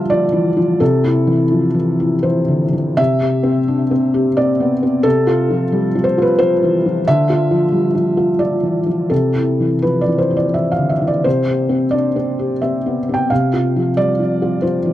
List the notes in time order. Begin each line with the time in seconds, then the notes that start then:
Already playing: D3 F3 G3 F4 E5
0.10 F3 D5
0.32 E3
0.57 F3
0.80 C3 A4
1.04 E4
1.27 E3
1.52 F3
1.74 E3
2.00 E4
2.23 E3 C5
2.48 D3
2.73 E3
2.97 C3 E5
3.22 G4
3.43 C4
3.68 D4
3.91 C4
4.14 G4
4.37 C4 D5
4.60 B3
4.83 C4
5.03 C3 A4
5.27 F4
5.50 F3
5.72 G3
5.95 F3
6.04 C5
6.18 F4
6.22 B4
6.39 F3 C5
6.63 E3
6.86 F3
7.07 D3 E5
7.30 F4
7.51 F3
7.72 G3
7.95 F3
8.17 F4
8.39 F3 D5
8.63 E3
8.86 F3
9.10 C3 A4
9.35 E4
9.60 E3
9.82 F3 B4
10.01 D5
10.08 E3
10.18 C5
10.31 E4
10.37 D5
10.54 E3 E5
10.72 F5
10.78 D3
10.89 E5
11.01 E3
11.07 D5
11.24 C3 C5
11.48 G4
11.69 C4
11.91 D4 D5
12.16 C4
12.39 G4
12.62 C4 E5
12.86 B3
13.09 C4
13.14 G5
13.30 C3 F5
13.54 F4
13.76 F3
13.97 G3 D5
14.20 F3
14.42 F4
14.62 F3 C5
14.85 E3